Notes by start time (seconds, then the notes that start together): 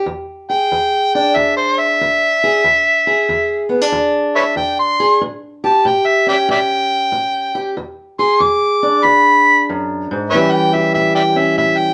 0.06 E2
0.50 G#4 G5
0.72 E2
1.15 D4 G5
1.36 E2 E5
1.57 C5
1.79 E5
2.01 E2
2.44 G#4
2.64 E2
3.07 G#4
3.29 E2
3.69 B3
3.81 D4
3.92 E2
4.36 B4 C#5 E5
4.56 E2 G5
4.79 C6
5.00 G#4
5.21 A2
5.64 G4 A5
5.85 A2 G5
6.07 E5
6.27 C#4 D5 E5 G5
6.49 A2 D5 E5 G5
7.12 A2
7.55 G4
7.77 E2
8.19 G#4 C6
8.40 E2 D6
8.83 D4
9.04 E2 B5
9.69 F#2
10.11 G#2
10.30 A2 E3 B4 C#5 E5
10.34 G3 C#4 G4
10.51 G5
10.74 G4 E5
10.94 A2 E5
11.15 D5 E5 G5
11.36 C#4 E5
11.58 A2 E5
11.78 G5